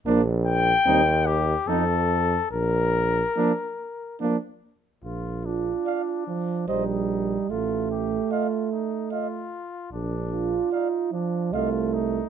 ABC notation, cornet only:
X:1
M:3/4
L:1/8
Q:1/4=74
K:Bb
V:1 name="Cornet"
z g2 G A2 | B4 z2 | F D3 E2 | F G F E F2 |
D2 E D F E |]